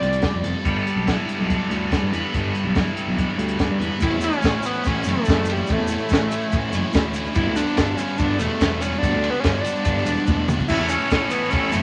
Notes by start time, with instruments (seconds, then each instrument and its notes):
Already playing: overdriven electric guitar C4 F4, analog synth lead D5
0.01 picked electric bass C2, overdriven electric guitar G3, snare, closed hi-hat
0.13 closed hi-hat
0.22 overdriven electric guitar C4, kick, snare, closed hi-hat
0.34 picked electric bass F2
0.43 picked electric bass F1, overdriven electric guitar A4, closed hi-hat
0.63 picked electric bass G1, distorted electric guitar G2 D3 B3 D4, overdriven electric guitar G3, kick, closed hi-hat
0.68 distorted electric guitar G4
0.87 closed hi-hat
0.96 picked electric bass B1
1.07 overdriven electric guitar E4, kick, snare, closed hi-hat
1.28 overdriven electric guitar G3, closed hi-hat
1.39 picked electric bass B1
1.49 overdriven electric guitar D4, kick, closed hi-hat
1.70 picked electric bass D2, overdriven electric guitar G3, snare, closed hi-hat
1.91 overdriven electric guitar D4, kick, snare, closed hi-hat
2.02 picked electric bass G2
2.12 picked electric bass E2, overdriven electric guitar B4, closed hi-hat
2.34 picked electric bass G1, overdriven electric guitar G3, kick, closed hi-hat
2.55 closed hi-hat
2.64 picked electric bass B1
2.75 overdriven electric guitar E4, kick, snare, closed hi-hat
2.96 overdriven electric guitar G3, closed hi-hat
3.07 picked electric bass B1
3.17 overdriven electric guitar D4, kick, closed hi-hat
3.38 picked electric bass D2, overdriven electric guitar G3, closed hi-hat
3.48 closed hi-hat
3.58 overdriven electric guitar D4, kick, snare, closed hi-hat
3.69 picked electric bass G2
3.79 picked electric bass E2, overdriven electric guitar B4, closed hi-hat
3.99 picked electric bass A1, overdriven electric guitar A2 E3 A3 C#4 E4, analog synth lead E4, kick, ride, shaker
4.11 picked electric bass E2
4.18 overdriven electric guitar A2 E3 A3 C#4 E4, shaker
4.24 analog synth lead C#4, ride
4.32 shaker
4.41 picked electric bass A1, overdriven electric guitar A2 E3 A3 C#4 E4, kick, ride, shaker
4.45 snare
4.61 overdriven electric guitar A2 E3 A3 C#4 E4, shaker
4.65 analog synth lead B3, ride
4.73 shaker
4.82 picked electric bass A1, overdriven electric guitar A2 E3 A3 C#4 E4, shaker
4.87 analog synth lead C#4, kick, ride
5.04 picked electric bass F#1, overdriven electric guitar A2 E3 A3 C#4 E4, shaker
5.08 analog synth lead A3, ride
5.25 picked electric bass F#1, overdriven electric guitar A2 E3 A3 C#4 E4, kick, shaker
5.29 snare, ride
5.45 overdriven electric guitar A2 E3 A3 C#4 E4, shaker
5.50 analog synth lead G3, ride
5.56 shaker
5.67 picked electric bass A1, overdriven electric guitar A2 E3 A3 C#4 E4, kick, ride, shaker
5.72 analog synth lead A3
5.79 picked electric bass E2
5.87 overdriven electric guitar A2 E3 A3 C#4 E4, shaker
5.92 ride
5.98 shaker
6.09 picked electric bass A1, overdriven electric guitar A2 E3 A3 C#4 E4, kick, ride, shaker
6.14 snare
6.30 overdriven electric guitar A2 E3 A3 C#4 E4, ride, shaker
6.41 shaker
6.50 picked electric bass A1, overdriven electric guitar A2 E3 A3 C#4 E4, kick, ride, shaker
6.70 picked electric bass F#1, overdriven electric guitar A2 E3 A3 C#4 E4, shaker
6.75 ride
6.92 picked electric bass D2, overdriven electric guitar A2 E3 A3 C#4 E4, kick, snare, ride, shaker
7.14 overdriven electric guitar A2 E3 A3 C#4 E4, ride, shaker
7.25 shaker
7.34 picked electric bass G1, overdriven electric guitar G2 D3 G3 B3 D4, analog synth lead E4, kick, ride, shaker
7.47 picked electric bass D2
7.54 overdriven electric guitar G2 D3 G3 B3 D4, analog synth lead D4, ride, shaker
7.67 shaker
7.76 picked electric bass G1, overdriven electric guitar G2 D3 G3 B3 D4, kick, snare, ride, shaker
7.96 overdriven electric guitar G2 D3 G3 B3 D4, analog synth lead C#4, ride, shaker
8.07 shaker
8.18 picked electric bass G1, overdriven electric guitar G2 D3 G3 B3 D4, analog synth lead D4, kick, ride, shaker
8.38 picked electric bass E1, overdriven electric guitar G2 D3 G3 B3 D4, analog synth lead A3, ride, shaker
8.60 picked electric bass E1, overdriven electric guitar G2 D3 G3 B3 D4, kick, snare, ride, shaker
8.80 overdriven electric guitar G2 D3 G3 B3 D4, analog synth lead C#4, ride, shaker
8.93 shaker
8.99 picked electric bass G1, overdriven electric guitar G2 G3, analog synth lead D4
9.03 overdriven electric guitar D3 B3 D4, kick, ride, shaker
9.12 picked electric bass D2
9.21 overdriven electric guitar G2 D3 G3 B3 D4, ride
9.30 analog synth lead B3
9.34 shaker
9.40 overdriven electric guitar G2 D3 G3, analog synth lead C#4, ride
9.44 picked electric bass G1, overdriven electric guitar B3 D4, kick, snare, shaker
9.61 overdriven electric guitar G2 D3 G3, analog synth lead D4, ride
9.65 overdriven electric guitar B3 D4, shaker
9.75 shaker
9.83 picked electric bass G1, overdriven electric guitar G2 D3 G3 B3 D4, analog synth lead D4, kick, ride, shaker
9.98 snare
10.06 picked electric bass E1, overdriven electric guitar G2 D3 G3 B3 D4, ride, shaker
10.17 shaker
10.27 picked electric bass E1, overdriven electric guitar G2 D3 G3 B3 D4, kick, high tom, shaker
10.48 overdriven electric guitar G2 D3 G3 B3 D4, mid tom, shaker
10.59 kick, shaker
10.68 picked electric bass A1, overdriven electric guitar A2 E3 A3 C#4 E4, analog synth lead E4, kick, crash, shaker
10.73 distorted electric guitar A4
10.79 picked electric bass E2
10.89 overdriven electric guitar A2 E3 A3, analog synth lead C#4, ride, shaker
10.93 overdriven electric guitar C#4 E4, distorted electric guitar A4
11.00 shaker
11.10 picked electric bass A1, overdriven electric guitar A2 E3 A3 C#4 E4, kick, snare, ride, shaker
11.15 distorted electric guitar A4
11.30 overdriven electric guitar A2 E3 A3 C#4 E4, analog synth lead B3, ride, shaker
11.35 distorted electric guitar A4
11.41 shaker
11.50 picked electric bass A1, overdriven electric guitar A2 E3 A3, analog synth lead C#4, kick, ride, shaker
11.55 overdriven electric guitar C#4 E4, distorted electric guitar A4
11.64 snare
11.72 picked electric bass F#1, overdriven electric guitar A2 E3 A3 C#4 E4, analog synth lead A3, ride, shaker
11.77 distorted electric guitar A4